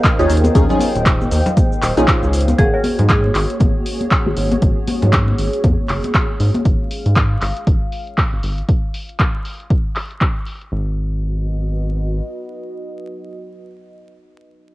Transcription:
Already playing: D#4 G#4 A#4 C5 D#5 F5 G5
0.04 kick, clap, cabasa
0.19 D#2 C#4 D#4 F4 G#4, cabasa
0.30 D#2, open hi-hat, cabasa
0.37 closed hi-hat
0.44 closed hi-hat, high conga, cabasa
0.55 D#2 C#4 D#4 F4 G#4, kick, closed hi-hat, cabasa
0.70 C#4 D#4 F4 G#4, low conga, cabasa
0.79 open hi-hat, high conga, cabasa
0.96 D#1, closed hi-hat, cabasa
1.06 kick, clap, closed hi-hat, cabasa
1.21 high conga, cabasa
1.31 D#2, open hi-hat, cabasa
1.46 closed hi-hat, low conga, cabasa
1.57 kick, closed hi-hat, high conga, cabasa
1.72 cabasa
1.82 D#1, clap, open hi-hat, cabasa
1.97 A#1 C#4 D#4 F4 G#4, closed hi-hat, high conga, cabasa
2.08 kick, clap, cabasa
2.23 C#2, cabasa
2.33 open hi-hat, cabasa
2.41 closed hi-hat
2.48 closed hi-hat, high conga, cabasa
2.59 G#1 A#3 C#4 F#4 G#4 C#5, kick, closed hi-hat
2.67 C#5
2.74 A#3 C#4 F#4 A#4
2.84 open hi-hat, high conga
2.99 G#2, closed hi-hat, low conga
3.09 G#4, kick, clap, closed hi-hat
3.23 F#5, high conga
3.35 G#1, clap, open hi-hat
3.50 closed hi-hat
3.60 G#1, kick, closed hi-hat, high conga
3.86 open hi-hat
4.01 closed hi-hat, high conga
4.11 kick, clap
4.26 G#1 A#3 C#4 F#4 G#4
4.37 G#1, open hi-hat
4.51 closed hi-hat, high conga
4.62 G#1, kick, closed hi-hat
4.87 open hi-hat, high conga
5.02 G#2, closed hi-hat, low conga
5.13 kick, clap, closed hi-hat
5.28 high conga
5.38 G#1, open hi-hat
5.53 closed hi-hat
5.64 F2, kick, closed hi-hat, high conga
5.89 F#1, clap, open hi-hat
5.97 F5
6.04 closed hi-hat, high conga
6.15 kick, clap
6.40 G#2, open hi-hat
6.54 closed hi-hat, high conga
6.65 G#1, kick, closed hi-hat
6.91 open hi-hat
7.06 G#2, closed hi-hat
7.16 kick, clap, closed hi-hat
7.42 G#1, clap, open hi-hat
7.57 closed hi-hat
7.67 G#1, kick, closed hi-hat
7.92 open hi-hat
8.07 closed hi-hat
8.18 kick, clap
8.33 G#1
8.43 G#1, open hi-hat
8.58 closed hi-hat
8.69 kick, closed hi-hat
8.94 open hi-hat
9.09 closed hi-hat
9.20 kick, clap, closed hi-hat
9.45 open hi-hat
9.60 closed hi-hat
9.70 kick, closed hi-hat
9.96 clap, open hi-hat
10.11 closed hi-hat
10.21 kick, clap
10.47 open hi-hat
10.62 closed hi-hat
10.72 G#1 F#4
10.81 B4
10.89 D#5

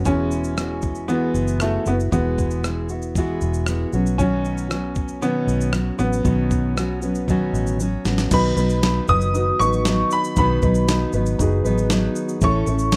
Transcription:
0.04 E1 E3 G#3 B3 C#4 E4 F#4, kick, shaker
0.31 shaker
0.44 shaker
0.56 G#3 B3 E4 F#4, cross-stick, shaker
0.82 kick, shaker
0.95 shaker
1.08 E3 G#3 B3 E4 F#4, shaker
1.34 F#1, shaker
1.48 shaker
1.60 G#3 A3 B3 E4 F#4, cross-stick, shaker
1.86 F#1 B3 E4 F#4, shaker
2.00 shaker
2.11 E1 E3 G#3 B3 E4 F#4, kick, shaker
2.38 kick, shaker
2.51 shaker
2.63 G#3 B3 E4 F#4, cross-stick, shaker
2.89 E4 F#4, shaker
2.93 B3
3.02 shaker
3.15 E3 G#3 B3 E4 F#4, kick, shaker
3.41 E1, shaker
3.54 shaker
3.66 G#3 B3 E4 F#4, cross-stick, shaker
3.93 B1 F#3 B3 C#4 F#4, shaker
4.06 shaker
4.18 B2 D#3 F#3 B3 C#4 F#4, kick, shaker
4.45 shaker
4.58 shaker
4.70 F#3 B3 C#4 F#4, cross-stick, shaker
4.95 kick, shaker
5.08 shaker
5.21 B2 D#3 F#3 B3 C#4 F#4, shaker
5.47 B1, shaker
5.61 shaker
5.72 F#3 B3 C#4 F#4, cross-stick, shaker
5.98 A1 F#3 B3 C#4 F#4, shaker
6.13 shaker
6.23 B1 B2 D#3 F#3 B3 C#4 F#4, kick, shaker
6.51 kick, shaker
6.76 F#3 B3 C#4 F#4, cross-stick, shaker
7.02 F#3 B3 C#4 F#4, shaker
7.15 shaker
7.28 B2 D#3 F#3 B3 C#4 F#4, kick, shaker
7.53 A1, shaker
7.67 shaker
7.80 F#3 B3 C#4 F#4, shaker
8.05 A1 F#3 B3 C#4 F#4, snare, shaker
8.18 snare, shaker
8.31 B1 B2 D#3 F#3 B3 D#4 F#4 B4 B5, kick, crash, shaker
8.56 B1 F#3 B3 D#4 B4, shaker
8.70 shaker
8.82 F#3 B3 D#4 B4, snare, shaker
9.08 F#1 B3 D#4 B4 D#6, kick, shaker
9.12 F#3
9.21 shaker
9.34 D#4 F#4 B4, shaker
9.59 A1 B3 D#4 B4 C#6, shaker
9.64 F#3
9.73 shaker
9.85 F#3 B3 D#4, snare, shaker
9.90 B4
10.11 B5, shaker
10.24 shaker
10.36 B1 B2 D#3 F#3 B3 D#4 F#4 B4 B5, kick, shaker
10.62 B1 F#3 B3 D#4 B4, kick, shaker
10.75 shaker
10.87 F#3 B3 D#4 B4, snare, shaker
11.13 G#1 B3 D#4 B4, shaker
11.17 F#3
11.26 shaker
11.39 F#1 D#4 F#4 G#4, kick, shaker
11.64 A1 F#3 B3 D#4 B4, shaker
11.78 shaker
11.90 F#3 B3 D#4, snare, shaker
11.94 B4
12.16 shaker
12.29 shaker
12.41 A1 A2 C#3 E3 A3 C#4 E4 A4 C#5 C#6, kick, shaker
12.67 A1 C#4 E4 A4, shaker
12.71 A3
12.79 shaker
12.92 A3, snare, shaker

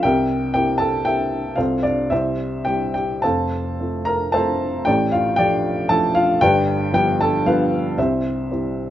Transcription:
0.03 C2 C3 G4 A#4 E5 G5
0.54 A#3 C4 E4 G4 G5
0.78 A4 A5
1.04 A#3 C4 E4 G4 E5 G5
1.56 C2 C3 F4 A4 C5 F5
1.83 D4 D5
2.10 C2 C3 E4 G4 C5 E5
2.65 G3 C4 E4 G4 G5
2.94 G4 G5
3.22 F1 F2 A4 C5 F5 A5
3.80 A3 C4 F4
4.05 A#4 A#5
4.32 A3 C4 F4 A4 C5 A5
4.85 A1 A2 G4 D5 G5
5.12 F4 F5
5.36 F3 A3 D4 G4 D5 G5
5.89 F3 A3 D4 A4 A5
6.15 F4 F5
6.41 G1 G2 G4 B4 D5 G5
6.93 F3 G3 B3 G4 G5
7.21 A4 A5
7.46 F3 G3 B3 F4 B4 F5
7.98 C2 C3 E4 G4 C5 E5
8.51 G3 C4 E4

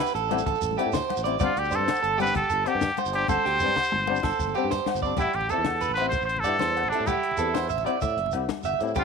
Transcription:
Already playing: E4
0.00 B4, low agogo
0.07 shekere
0.15 A1 A4, closed hi-hat, low conga
0.23 low conga
0.29 G3 C4 E4, closed hi-hat, high conga, low agogo
0.38 shekere
0.46 A1 A4, kick, closed hi-hat, low conga
0.55 low conga, shekere
0.62 A1, closed hi-hat, shekere
0.71 high conga
0.77 G3 C4 E4 G4, closed hi-hat, low agogo, shekere
0.86 A2
0.93 C5, snare, closed hi-hat, low conga, shekere
1.02 shekere
1.10 closed hi-hat, high conga, low conga, low agogo
1.17 A1, low conga, shekere
1.24 G3 C4 E4 D5, closed hi-hat
1.40 G1 G3 C4 D4 F4 D5, kick, closed hi-hat, high conga, low conga, low agogo, shekere
1.57 D2 G4, closed hi-hat
1.64 shekere
1.71 G2 G3 C4 C5, closed hi-hat, shekere
1.75 D4 A4
1.80 high conga
1.88 snare, closed hi-hat, low conga, low agogo
1.95 shekere
2.03 G1 A4, closed hi-hat, low conga
2.13 low conga
2.17 G3 C4 D4 G4 B4, closed hi-hat, high conga, low agogo
2.27 shekere
2.35 G1 A4, kick, closed hi-hat, low conga
2.42 low conga, shekere
2.50 G1 A4, closed hi-hat, shekere
2.64 G3 C4 G4, muted clean electric guitar stroke, muted steel-string acoustic guitar stroke, closed hi-hat, low agogo, shekere
2.75 G2
2.81 snare, closed hi-hat, low conga, shekere
2.89 shekere
2.97 C5, closed hi-hat, high conga, low conga, low agogo
3.06 G1, shekere
3.12 G3 G4, muted steel-string acoustic guitar stroke, closed hi-hat
3.16 D4
3.28 G1 A4 C5, kick, high tom, high conga, low conga, low agogo, shekere
3.38 low conga
3.45 D2 G4, snare
3.53 low conga
3.60 G2 G3 C4, low conga, shekere
3.64 D4
3.68 high conga, low conga
3.76 muted clean electric guitar stroke, snare, low conga, low agogo, shekere
3.83 shekere
3.92 G1, muted clean electric guitar stroke, mid tom, shekere
4.00 low conga
4.07 G3 C4 D4, high conga, low agogo
4.16 low conga, shekere
4.23 G1 A4, kick, snare, low conga
4.32 shekere
4.39 G1, kick, low conga, shekere
4.47 high conga, shekere
4.55 G3 C4 D4 G4, low conga, low agogo, shekere
4.64 G2
4.70 C5, snare, low conga, shekere
4.86 snare, high conga, low agogo
4.95 G1, shekere
5.02 G3 C4 D4 D5, kick, shekere
5.10 low conga
5.17 A1 G3 E4 G4, muted steel-string acoustic guitar stroke, kick, closed hi-hat, high conga, low conga, low agogo, shekere
5.21 E4
5.26 low conga
5.33 A1 G4, closed hi-hat
5.41 low conga
5.49 G3 C4 A4, closed hi-hat, shekere
5.53 E4
5.58 E2
5.64 snare, closed hi-hat, high conga, low conga, low agogo
5.72 low conga
5.81 B4, closed hi-hat, shekere
5.89 A1, low conga
5.94 G3 B4 C5, closed hi-hat, low agogo
6.00 C4 E4
6.09 C5, kick, closed hi-hat, high conga, low conga, shekere
6.20 A1, low conga, shekere
6.25 C5, closed hi-hat, shekere
6.36 A4, low conga
6.44 G2 G3 D5, muted steel-string acoustic guitar stroke, closed hi-hat, low agogo, shekere
6.48 E4
6.59 E2 C5, snare, closed hi-hat, high conga, low conga
6.68 shekere
6.77 closed hi-hat, low agogo
6.83 A1, low conga
6.89 G3 C4 D4 A4, closed hi-hat, shekere
6.94 E4
7.00 A2, shekere
7.07 E4 G4, kick, closed hi-hat, high conga, low conga, low agogo, shekere
7.17 low conga
7.23 closed hi-hat
7.31 low conga
7.37 E2 G3 C4 E4 A4, closed hi-hat, shekere
7.54 C5, snare, closed hi-hat, high conga, low conga, low agogo
7.62 low conga
7.70 A1 E5, closed hi-hat, shekere
7.78 low conga, shekere
7.84 G3 C4 E4 D5, closed hi-hat, low agogo
8.01 A2 E5, kick, closed hi-hat, high conga, low conga, shekere
8.08 low conga, shekere
8.17 G1, closed hi-hat
8.26 low conga
8.32 C2 G3 C4, closed hi-hat, low agogo, shekere
8.36 muted steel-string acoustic guitar stroke
8.49 snare, closed hi-hat, high conga, low conga
8.63 G1 E5, closed hi-hat, low agogo, shekere
8.73 low conga
8.79 A2 G3 C4 E4, closed hi-hat, shekere
8.87 shekere
8.95 G1 G3 C4 D4 F4 G4, kick, closed hi-hat, high conga, low conga, low agogo, shekere

